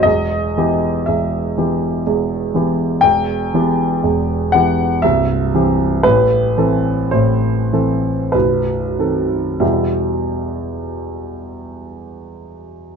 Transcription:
<<
  \new Staff \with { instrumentName = "Grand piano" } { \time 3/4 \key e \minor \tempo 4 = 58 dis''4 e''4. r8 | g''4. fis''8 e''4 | b'4 c''4 b'4 | <e, b, g b e' g' e''>2. | }
  \new Staff \with { instrumentName = "Grand piano" } { \clef bass \time 3/4 \key e \minor <e,, e,>8 <e b g'>8 <e,, e,>8 <e b g'>8 <e,, e,>8 <e b g'>8 | <e,, e,>8 <e b g'>8 <e,, e,>8 <e b g'>8 <c,, c,>8 <e c' g'>8 | <a,, a,>8 <e c' a'>8 <a,, a,>8 <e c' a'>8 <b,,, b,,>8 <dis c' a'>8 | r2. | }
>>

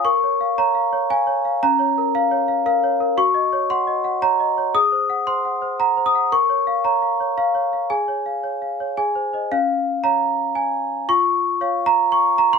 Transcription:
\new Staff \with { instrumentName = "Celesta" } { \time 3/4 \key des \major \tempo 4 = 114 << { des'''4 bes''4 aes''4 | bes''4 f''4 f''8 r8 | des'''4 c'''4 bes''4 | ees'''4 c'''4 bes''8 ees'''8 |
des'''4 bes''4 f''4 | aes''2 aes''4 | f''4 bes''4 aes''4 | des'''4. bes''8 des'''8 bes''16 c'''16 | } \\ { \tuplet 3/2 { bes'8 des''8 f''8 des''8 f''8 des''8 f''8 des''8 f''8 } | \tuplet 3/2 { des'8 des''8 bes'8~ bes'8 des''8 f''8 bes'8 des''8 bes'8 } | \tuplet 3/2 { ges'8 ees''8 des''8 ges''8 ees''8 ges''8 des''8 ees''8 des''8 } | \tuplet 3/2 { aes'8 c''8 ges''8 c''8 ges''8 c''8 ges''8 c''8 ges''8 } |
\tuplet 3/2 { bes'8 des''8 f''8 des''8 f''8 des''8~ des''8 des''8 f''8 } | \tuplet 3/2 { aes'8 des''8 f''8 des''8 f''8 des''8 aes'8 c''8 <c'' ees''>8 } | des'4 <des'' f''>2 | f'4 <des'' f''>2 | } >> }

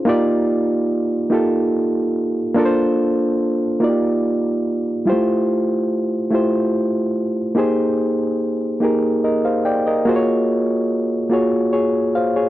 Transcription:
\new Staff \with { instrumentName = "Reed electric piano" } { \time 6/8 \key ees \lydian \tempo 4. = 48 << { r2. | r2. | \key f \dorian r2. | r2 <bes' ees''>16 <c'' f''>16 <d'' g''>16 <bes' ees''>16~ |
<bes' ees''>16 r4. r16 <aes' des''>8 <c'' f''>16 <aes' des''>16 | } \\ { <bes ees' f' g' d''>4. <bes ees' f' g' a'>4. | <bes d' f' a' bes' c''>4. <bes ees' f' ges' g' d''>4. | <g a e' f' g' c''>4. <a e' f' g' c''>4. | <bes ees' g' aes' c''>4. <bes ees' g' aes' bes'>4. |
<bes f' ges' aes' c'' des''>4. <bes f' ges' aes' des''>4. | } >> }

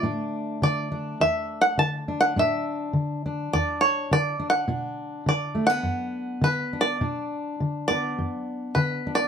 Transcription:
<<
  \new Staff \with { instrumentName = "Five-string banjo" } { \time 4/4 \key a \mixolydian \tempo 4 = 103 d''4 d''4 \tuplet 3/2 { e''4 fis''8 a''4 fis''8 } | e''2 d''8 cis''8 \tuplet 3/2 { d''4 fis''8~ } | fis''4 \tuplet 3/2 { d''4 fis''8~ } fis''4 \tuplet 3/2 { b'4 d''8~ } | d''4. d''4. \tuplet 3/2 { b'4 d''8 } | }
  \new Staff \with { instrumentName = "Steel-string acoustic guitar" } { \clef bass \time 4/4 \key a \mixolydian << { <a d'>4. d'2 d'8 | d'4. d'2 d'8 | d'4. a16 b4.~ b16 d'8 | d'4. b2 d'8 | } \\ { a,4 d4 e,4 d4 | a,4 d4 e,4 d4 | b,4 d4 fis,4 d4 | b,4 d4 fis,4 d4 | } >> }
>>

